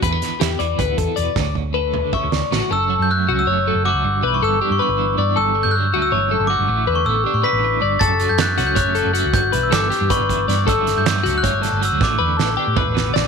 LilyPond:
<<
  \new Staff \with { instrumentName = "Glockenspiel" } { \time 7/8 \key e \dorian \tempo 4 = 158 r2. r8 | r2 cis'''4 r8 | e'''8. g'''16 fis'''8. e'''4~ e'''16 d'''8~ | d'''8. cis'''16 e'''8. cis'''16 cis'''4 r8 |
e'''8. g'''16 fis'''8. e'''4~ e'''16 d'''8~ | d'''8. cis'''16 e'''8. cis'''16 b'''4. | a'''8. g'''16 fis'''8. g'''16 fis'''4. | g'''8. e'''16 d'''4 cis'''4. |
e'''8. g'''4 fis'''4~ fis'''16 e'''8 | d'''2. r8 | }
  \new Staff \with { instrumentName = "Clean electric guitar" } { \time 7/8 \key e \dorian b'4 g'8 d''8 b'8 a'8 d''8~ | d''8 r8 b'4 e''8 d''8 fis'8 | a'4 r8 fis'8 cis''8 a'8 fis'8~ | fis'8 b'8 a'8 g'8 b'4 d''8 |
a'4 r8 fis'8 cis''8 a'8 fis'8~ | fis'8 b'8 a'8 g'8 b'4 d''8 | a'4 r8 fis'8 cis''8 a'8 fis'8~ | fis'8 b'8 a'8 g'8 b'4 d''8 |
a'4 r8 fis'8 cis''8 a'8 fis'8~ | fis'8 b'8 a'8 g'8 b'4 d''8 | }
  \new Staff \with { instrumentName = "Clean electric guitar" } { \clef bass \time 7/8 \key e \dorian << { <a d'>16 b8. e'4 b4. | cis'4 a'4 cis'4. | r4 a8 cis'8 a4 a8 | r4 b8 d'8 b4 b8 |
r4 fis8 a2~ | a4 b8 d'2 | r4 a8 cis'8 a4 a8 | r4 b8 d'8 b4 b8 |
<d fis a e'>4 fis8 a8 fis4 fis8 | r4 b8 d'2 | } \\ { <e, d>4. e4. b,8 | d,4. d4. a,8 | fis,8 fis2 fis4 | g,8 e2 e4 |
g,8 d4. e,8 fis,8 g,8 | a,8 d4. b,8 a,8 g,8 | fis,8 fis2 fis4 | g,8 e2 e4 |
g,8 d2 d4 | a,8 d4. a,8 b,8 r8 | } >> }
  \new Staff \with { instrumentName = "Fingered electric bass" } { \clef bass \time 7/8 \key e \dorian e,8 r8 e,8 e,8 d,8 e,16 r16 e,16 r16 | d,2 r16 d,16 d,16 r16 a,,16 r16 | fis,,8. fis,8. cis,8 fis,,8. fis,,8 cis,16 | g,,8 b,,8 g,,8 r16 g,16 r16 g,,8. g,8 |
g,,8. g,8. d,8 g,,8. g,,8 g,,16 | a,,8 e,8 a,,8 r16 a,16 r16 a,,8. g,,8 | fis,,8. fis,8. cis,8 fis,,8. fis,,8 cis,16 | g,,8 b,,8 g,,8 r16 g,16 r16 g,,8. g,8 |
g,,8. g,8. d,8 g,,8. g,,8 d,16 | a,,8 e,8 a,,8 r16 a,16 r16 a,,8. a,,8 | }
  \new DrumStaff \with { instrumentName = "Drums" } \drummode { \time 7/8 <hh bd>8 <hh sn>8 <hh sn>8 hh8 <hh bd>8 <hh bd>8 hh8 | <bd sn>8 bd8 r8 toml8 bd8 sn8 sn8 | r4 r4 r4. | r4 r4 r4. |
r4 r4 r4. | r4 r4 r4. | <hh bd>8 hh8 <hh sn>8 <hh sn>8 <hh bd>8 hh8 hh8 | <hh bd>8 hh8 <hh sn>8 <hh sn>8 <hh bd>8 <hh bd>8 <hh sn>8 |
<hh bd>8 <hh sn>8 <hh sn>8 hh8 <hh bd>8 <hh sn>8 hh8 | <bd sn>4 sn4 <bd toml>8 sn8 sn8 | }
>>